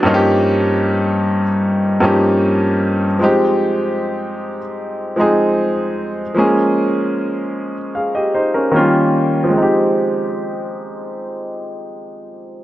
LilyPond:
\new Staff \with { instrumentName = "Grand piano" } { \time 4/4 \key f \minor \tempo 4 = 76 << { r1 | r1 | r2 <aes' f''>16 <g' ees''>16 <ees' c''>16 <des' bes'>8 r8. | r1 | } \\ { <g, f bes des' ees' f' g'>4.~ <g, f bes des' ees' f' g'>16 r8. <g, f bes des' ees' g'>4. | <f aes c' ees' g'>4.~ <f aes c' ees' g'>16 r8. <f aes c' ees' aes'>4. | <f aes bes des' aes'>4.~ <f aes bes des' aes'>16 r4 r16 <ees f g bes des' f'>4 | <f aes c' ees' g'>1 | } >> }